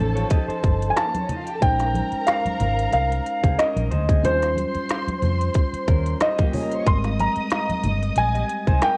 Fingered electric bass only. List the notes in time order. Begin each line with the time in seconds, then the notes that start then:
Already playing: A1
0.48 muted fingered electric bass stroke
0.64 G1
1.62 A#1
2.12 muted fingered electric bass stroke
2.45 muted fingered electric bass stroke
2.60 G#1
2.93 C2
3.44 C#2
3.76 A#1
3.91 D2
4.24 D#2
4.75 muted fingered electric bass stroke
5.07 muted fingered electric bass stroke
5.22 F2
5.73 muted fingered electric bass stroke
5.88 D#2
6.86 G#1
7.36 muted fingered electric bass stroke
7.69 muted fingered electric bass stroke
7.83 G1
8.16 A#1
8.67 C2